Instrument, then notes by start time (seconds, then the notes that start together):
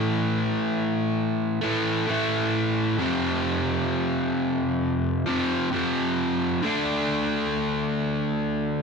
overdriven electric guitar
Already playing: A2 E3 A3
1.61 A2 E3 A3
2.08 A2 E3 A3
2.99 F2 C3 F3
5.26 F2 C3 F3
5.72 F2 C3 F3
6.62 D3 A3 D4